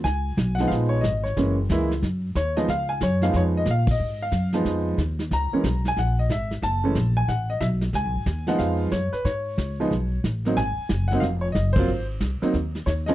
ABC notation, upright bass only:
X:1
M:4/4
L:1/8
Q:"Swing" 1/4=182
K:Dbmix
V:1 name="Upright bass" clef=bass
D,,2 C,,2 B,,,2 A,,,2 | G,,,2 D,,2 G,,2 E,,2 | D,,2 G,,2 F,,2 B,,2 | A,,2 G,,2 F,,2 E,,2 |
D,, z C,,2 B,,,2 A,,,2 | G,,,2 B,,,2 =A,,,2 C,,2 | (3D,, C,, A,,, E,,2 F,,2 G,, z | A,,2 D,,2 C,,2 =A,,,2 |
A,,, z G,,,2 F,,,2 G,,,2 | A,,,2 =C,, z E,,2 E,,2 |]